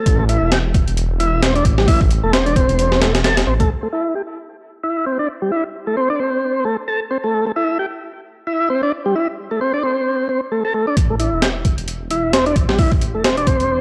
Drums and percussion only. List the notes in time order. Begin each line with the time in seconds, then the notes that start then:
0.06 kick, closed hi-hat
0.29 closed hi-hat
0.52 snare, closed hi-hat
0.74 kick, closed hi-hat
0.88 closed hi-hat
0.97 closed hi-hat
1.20 closed hi-hat
1.43 snare, closed hi-hat
1.56 closed hi-hat
1.65 kick, closed hi-hat
1.78 snare
1.88 kick, open hi-hat
2.01 kick
2.11 closed hi-hat
2.33 snare, closed hi-hat
2.46 closed hi-hat
2.56 kick, closed hi-hat
2.69 closed hi-hat
2.79 closed hi-hat
2.92 snare
3.02 snare, closed hi-hat
3.15 snare, closed hi-hat
3.24 snare, closed hi-hat
3.37 snare, closed hi-hat
3.60 kick, closed hi-hat
10.97 kick, closed hi-hat
11.20 closed hi-hat
11.42 snare, closed hi-hat
11.65 kick, closed hi-hat
11.78 closed hi-hat
11.88 closed hi-hat
12.11 closed hi-hat
12.33 snare, closed hi-hat
12.46 closed hi-hat
12.56 kick, closed hi-hat
12.69 snare
12.79 kick, open hi-hat
12.92 kick
13.02 closed hi-hat
13.24 snare, closed hi-hat
13.37 closed hi-hat
13.47 kick, closed hi-hat
13.60 closed hi-hat